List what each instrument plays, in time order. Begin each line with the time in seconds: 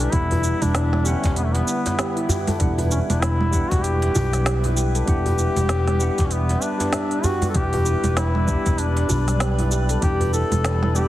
Already playing: tine electric piano D3 G3 B3 F#5, ambient pad E4 B4 E5
0.00 duduk D4, handpan A4, open hi-hat, shaker
0.12 fretless electric bass E1, tine electric piano G3 B3 D4 F#5, duduk E4, handpan E4, kick, open hi-hat, shaker
0.31 handpan B4, open hi-hat, djembe bass
0.44 handpan E4, shaker
0.62 fretless electric bass E1, duduk D4, open hi-hat, djembe tone, low conga, shaker
0.75 snare, open hi-hat, shaker
0.93 handpan E4, snare, low conga
1.04 tine electric piano D3 G3 B3 F#5, duduk C#4, handpan G4, shaker
1.24 fretless electric bass E1, kick, open hi-hat, djembe slap, shaker
1.36 duduk B3, open hi-hat, shaker
1.45 duduk A3
1.55 duduk B3, open hi-hat, djembe slap
1.68 shaker
1.86 open hi-hat, djembe slap, djembe tone, shaker
1.99 handpan G4, snare, open hi-hat, shaker
2.17 handpan E4, open hi-hat
2.29 handpan G4, djembe bass, shaker
2.47 handpan A4, open hi-hat, low conga, djembe bass, shaker
2.58 fretless electric bass E1, tine electric piano G3 B3 D4, handpan E4, ambient pad E5, kick, open hi-hat, shaker
2.63 tine electric piano F#5
2.78 handpan B4, open hi-hat, djembe bass
2.91 duduk C#4, handpan E4, shaker
3.09 fretless electric bass E1, duduk D4, open hi-hat, djembe tone, low conga, shaker
3.21 duduk E4, snare, open hi-hat, shaker
3.41 handpan E4, low conga
3.51 tine electric piano G3 B3 D4 F#5, handpan G4, kick, shaker
3.70 fretless electric bass E1, duduk F#4, kick, open hi-hat, djembe slap, shaker
3.83 duduk G4, open hi-hat, shaker
4.02 open hi-hat, djembe slap
4.15 fretless electric bass B1, djembe bass, shaker
4.33 snare, open hi-hat, shaker
4.46 handpan G4, snare, open hi-hat, shaker
4.64 handpan E4, open hi-hat, djembe tone
4.77 handpan G4, shaker
4.95 handpan A4, open hi-hat, shaker
5.05 fretless electric bass E1, tine electric piano G3 B3 D4 F#5, handpan E4, duduk G4, kick, open hi-hat, shaker
5.26 handpan B4, open hi-hat, djembe bass
5.39 handpan E4, shaker
5.56 fretless electric bass E1, open hi-hat, djembe tone, low conga, shaker
5.69 snare, open hi-hat, shaker
5.88 handpan E4, snare, open hi-hat, low conga
5.99 tine electric piano G3 B3 D4 F#5, handpan G4, shaker
6.18 fretless electric bass E1, kick, open hi-hat, djembe slap, shaker
6.26 duduk C#4
6.31 duduk B3, open hi-hat, shaker
6.49 open hi-hat, djembe slap
6.62 duduk D4, shaker
6.78 tine electric piano G3 B3 D4, open hi-hat, djembe slap, djembe tone, shaker
6.82 tine electric piano G4
6.93 handpan E5, snare, open hi-hat, shaker
7.11 open hi-hat
7.24 duduk F#4, handpan G4, djembe bass, shaker
7.42 handpan B4, open hi-hat, djembe bass, low conga, shaker
7.50 tine electric piano G3, duduk A4
7.54 fretless electric bass E1, ambient pad G3 D5 B5, tine electric piano B3 D4 G4, handpan E4, duduk G4, kick, open hi-hat, shaker
7.73 handpan B4, open hi-hat, djembe bass
7.86 handpan E4, shaker
8.04 fretless electric bass E1, open hi-hat, djembe tone, low conga, shaker
8.17 duduk E4, snare, open hi-hat, shaker
8.35 handpan E4, low conga
8.46 tine electric piano G3 B3 D4, handpan G4, kick, shaker
8.50 tine electric piano G4
8.66 fretless electric bass E1, kick, open hi-hat, djembe slap, shaker
8.78 duduk D4, open hi-hat, shaker
8.97 open hi-hat, djembe slap
9.09 fretless electric bass B1, djembe bass, shaker
9.28 snare, open hi-hat, shaker
9.40 handpan G4, snare, open hi-hat, shaker
9.59 handpan E4, open hi-hat, djembe tone
9.72 handpan G4, shaker
9.89 handpan A4, open hi-hat, shaker
10.01 fretless electric bass E1, tine electric piano G3 B3 D4 G4, handpan E4, duduk G4, kick, open hi-hat, shaker
10.20 handpan B4, open hi-hat, djembe bass
10.33 handpan E4, duduk A4, shaker
10.51 fretless electric bass E1, open hi-hat, djembe tone, low conga, shaker
10.65 snare, open hi-hat, shaker
10.83 handpan E4, snare, low conga
10.94 tine electric piano G3 B3 D4, handpan G4, duduk G4, shaker
10.98 tine electric piano G4